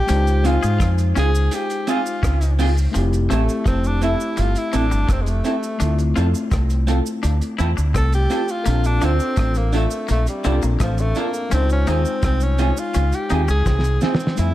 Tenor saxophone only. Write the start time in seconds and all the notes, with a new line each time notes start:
Already playing: G4
0.46 F4
1.19 G#4
1.54 G4
1.90 F4
3.32 A3
3.67 C4
3.86 D4
4.04 E4
4.40 F4
4.58 E4
4.76 D4
5.12 C4
5.22 G#3
5.29 A3
7.97 A4
8.15 G4
8.51 F4
8.86 D4
9.04 C4
9.58 A#3
9.75 A3
10.11 A3
10.29 G3
10.46 G3
10.82 F3
11.00 A3
11.18 A#3
11.54 C4
11.72 C#4
11.89 C4
12.25 C4
12.43 C#4
12.79 F4
13.15 G4
13.50 G#4
14.03 C4
14.39 E4